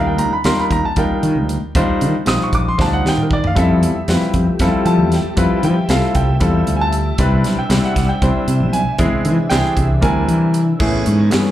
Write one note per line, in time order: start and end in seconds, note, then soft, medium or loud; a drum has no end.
0.00 0.18 D#2 medium
0.00 0.31 G3 medium
0.00 0.31 D4 medium
0.00 0.31 D#4 medium
0.00 0.31 F4 medium
0.00 0.31 A#4 medium
0.07 0.19 G5 medium
0.18 0.30 D2 medium
0.18 0.32 A#5 medium
0.18 closed hi-hat medium
0.31 0.45 B5 medium
0.31 muted fretless electric bass stroke soft
0.44 0.56 D#2 loud
0.44 0.83 G3 medium
0.44 0.83 D4 medium
0.44 0.84 D#4 medium
0.44 0.83 F4 medium
0.44 0.84 A#4 medium
0.44 0.58 C6 medium
0.44 snare loud
0.44 closed hi-hat medium
0.57 0.72 B5 medium
0.57 muted fretless electric bass stroke soft
0.70 0.82 D#2 medium
0.70 0.84 A#5 medium
0.70 kick medium
0.70 closed hi-hat medium
0.85 0.97 A5 medium
0.96 1.08 D#2 loud
0.96 1.54 G3 medium
0.96 1.54 D4 medium
0.96 1.54 D#4 medium
0.96 1.55 F4 medium
0.96 1.55 A#4 medium
0.96 1.72 G5 medium
0.96 kick medium
0.96 closed hi-hat medium
1.10 muted fretless electric bass stroke soft
1.23 1.37 D#3 medium
1.23 closed hi-hat medium
1.35 1.58 D2 medium
1.49 closed hi-hat medium
1.62 muted fretless electric bass stroke soft
1.75 1.86 D#2 medium
1.75 2.13 G3 medium
1.75 2.14 D4 medium
1.75 2.14 D#4 medium
1.75 2.14 F4 medium
1.75 2.14 C5 loud
1.75 kick loud
1.75 closed hi-hat medium
1.88 muted fretless electric bass stroke soft
2.01 2.12 D#3 medium
2.01 closed hi-hat medium
2.25 2.38 A#1 medium
2.25 2.64 G3 medium
2.25 2.65 D4 medium
2.25 2.65 D#4 medium
2.25 2.65 F4 medium
2.25 2.65 C5 medium
2.25 2.40 D#6 medium
2.25 snare loud
2.25 closed hi-hat medium
2.43 2.54 C#6 medium
2.53 2.75 A#1 medium
2.53 2.66 D6 loud
2.53 kick medium
2.53 closed hi-hat medium
2.68 2.80 C6 medium
2.78 3.01 D2 medium
2.78 3.36 G3 medium
2.78 3.36 D4 medium
2.78 3.36 D#4 medium
2.78 3.36 F4 medium
2.78 3.36 C5 medium
2.78 2.93 A5 medium
2.78 kick loud
2.78 snare medium
2.93 3.05 F#5 medium
3.05 3.49 D#3 medium
3.05 3.19 G5 medium
3.05 snare medium
3.18 mid tom medium
3.22 3.32 A#4 medium
3.31 3.44 D5 medium
3.31 kick medium
3.44 3.58 F5 medium
3.44 floor tom medium
3.55 3.82 F2 medium
3.55 7.15 F3 medium
3.55 3.94 G3 medium
3.55 7.16 A3 medium
3.55 3.94 C4 medium
3.55 3.94 E4 medium
3.55 3.94 F4 medium
3.55 7.15 G4 loud
3.55 3.95 A4 medium
3.55 10.76 E5 medium
3.55 kick loud
3.55 closed hi-hat medium
3.59 4.32 E5 medium
3.82 3.93 E2 loud
3.82 closed hi-hat medium
3.95 muted fretless electric bass stroke soft
4.08 4.19 F2 loud
4.08 4.46 G3 medium
4.08 4.47 C4 medium
4.08 4.47 E4 medium
4.08 4.47 F4 medium
4.08 4.47 B4 medium
4.08 snare loud
4.08 closed hi-hat medium
4.21 muted fretless electric bass stroke soft
4.34 4.45 F2 medium
4.34 kick medium
4.34 closed hi-hat medium
4.59 4.71 F2 loud
4.59 5.18 G3 medium
4.59 5.18 C4 medium
4.59 5.18 E4 medium
4.59 5.18 F4 medium
4.59 5.18 A4 medium
4.59 kick loud
4.59 snare soft
4.59 closed hi-hat medium
4.85 4.99 F3 medium
4.85 5.60 A5 medium
4.85 closed hi-hat medium
4.98 5.20 E2 medium
5.12 snare soft
5.12 closed hi-hat medium
5.24 muted fretless electric bass stroke soft
5.36 5.48 F2 loud
5.36 5.75 G3 medium
5.36 5.76 C4 medium
5.36 5.76 E4 medium
5.36 5.76 F4 medium
5.36 5.76 B4 medium
5.36 kick loud
5.36 closed hi-hat medium
5.51 muted fretless electric bass stroke soft
5.63 5.74 F3 loud
5.63 5.89 G5 medium
5.63 closed hi-hat medium
5.89 6.00 C2 medium
5.89 6.28 G3 medium
5.89 6.28 C4 medium
5.89 6.28 E4 medium
5.89 6.28 F4 medium
5.89 6.28 A4 medium
5.89 6.15 F5 medium
5.89 snare medium
5.89 closed hi-hat medium
6.02 muted fretless electric bass stroke soft
6.15 6.37 C2 medium
6.15 6.89 G5 medium
6.15 kick medium
6.15 closed hi-hat medium
6.40 6.63 E2 medium
6.40 6.98 G3 medium
6.40 6.98 C4 medium
6.40 6.98 E4 medium
6.40 6.99 F4 medium
6.40 6.99 A4 medium
6.40 kick loud
6.40 closed hi-hat medium
6.67 7.11 D2 medium
6.67 closed hi-hat medium
6.76 6.80 G#5 medium
6.81 7.54 A5 loud
6.93 closed hi-hat medium
7.18 7.44 C2 medium
7.18 10.77 C3 medium
7.18 7.57 G3 medium
7.18 7.57 C4 medium
7.18 8.98 D4 medium
7.18 7.57 D4 medium
7.18 7.57 E4 medium
7.18 7.58 B4 medium
7.18 kick loud
7.18 closed hi-hat medium
7.44 7.56 B1 loud
7.44 snare soft
7.44 closed hi-hat medium
7.58 7.83 G5 medium
7.58 muted fretless electric bass stroke soft
7.69 7.81 C2 loud
7.69 8.08 G3 medium
7.69 8.08 C4 medium
7.69 8.08 D4 medium
7.69 8.09 E4 medium
7.69 8.09 G4 medium
7.69 snare loud
7.69 closed hi-hat medium
7.83 8.09 F#5 medium
7.83 muted fretless electric bass stroke soft
7.96 8.07 C2 loud
7.96 kick medium
7.96 snare soft
7.96 closed hi-hat medium
8.09 8.83 G5 medium
8.22 8.33 C2 medium
8.22 8.79 G3 medium
8.22 8.79 C4 medium
8.22 8.79 D4 medium
8.22 8.80 E4 medium
8.22 8.80 C5 medium
8.22 kick loud
8.22 closed hi-hat medium
8.35 muted fretless electric bass stroke soft
8.47 8.62 C3 medium
8.47 closed hi-hat medium
8.60 8.82 B1 medium
8.73 9.47 G#5 medium
8.73 closed hi-hat medium
8.86 muted fretless electric bass stroke soft
8.98 9.10 E2 loud
8.98 10.79 E3 medium
8.98 9.37 G#3 medium
8.98 9.37 C4 medium
8.98 9.38 D4 medium
8.98 10.79 D4 medium
8.98 9.38 E4 medium
8.98 9.38 G#4 medium
8.98 kick loud
8.98 closed hi-hat medium
9.12 muted fretless electric bass stroke soft
9.25 9.36 E3 loud
9.25 closed hi-hat medium
9.50 9.62 C2 loud
9.50 9.89 C4 medium
9.50 9.89 D4 medium
9.50 9.89 E4 medium
9.50 9.89 G4 medium
9.50 9.89 G#4 medium
9.50 9.75 G5 loud
9.50 snare loud
9.50 closed hi-hat medium
9.63 muted fretless electric bass stroke soft
9.77 9.99 C2 medium
9.77 10.03 E5 medium
9.77 kick medium
9.77 closed hi-hat medium
10.01 10.24 D2 medium
10.01 10.59 G3 medium
10.01 10.59 C4 medium
10.01 10.59 D4 medium
10.01 10.59 E4 medium
10.01 10.60 A#4 medium
10.01 10.63 G#5 medium
10.01 kick loud
10.01 closed hi-hat medium
10.28 10.72 E3 medium
10.28 closed hi-hat medium
10.54 closed hi-hat medium
10.79 11.06 A2 medium
10.79 11.18 E3 medium
10.79 11.18 A3 medium
10.79 11.51 B3 medium
10.79 11.18 B3 medium
10.79 11.18 C#4 medium
10.79 11.51 G#4 medium
10.79 11.18 G#4 medium
10.79 11.51 C#5 medium
10.79 kick loud
10.79 crash loud
11.06 11.32 G#2 medium
11.06 closed hi-hat medium
11.30 11.51 G2 medium
11.30 11.51 E3 medium
11.30 11.51 A3 medium
11.30 11.51 B3 medium
11.30 11.51 C#4 medium
11.30 11.51 G#4 medium
11.30 snare loud
11.30 closed hi-hat medium